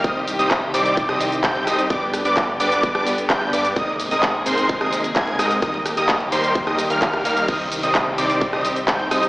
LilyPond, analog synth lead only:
\new Staff \with { instrumentName = "Analog synth lead" } { \time 4/4 \key c \minor \tempo 4 = 129 ees'''16 r8 ees'''8 r16 d'''8. ees'''16 r8 g'''8 ees'''16 r16 | d'''16 r8 d'''8 r16 d'''8. d'''16 r8 g'''8 d'''16 r16 | ees'''16 r8 ees'''8 r16 c'''8. ees'''16 r8 aes'''8 ees'''16 r16 | ees'''16 r8 ees'''8 r16 c'''8. ees'''16 r16 f'''8. f'''8 |
ees'''16 r8 ees'''8 r16 d'''8. ees'''16 r8 g'''8 ees'''16 r16 | }